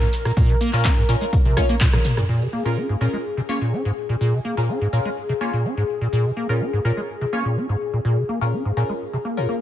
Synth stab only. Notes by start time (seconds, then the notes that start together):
0.73 C#4 F4 A#4
1.09 C#4 F4 A#4
1.57 C#4 F4 C#5
2.65 C#4 F4 A#4
3.01 C#4 F4 A#4
3.49 C#4 F4 C#5
4.57 C#4 F4 A#4
4.93 C#4 F4 A#4
5.41 C#4 F4 C#5
6.49 C#4 F4 A#4
6.85 C#4 F4 A#4
7.33 C#4 F4 C#5
8.41 C#4 F4 A#4
8.77 C#4 F4 A#4
9.37 C#4 F4 A#4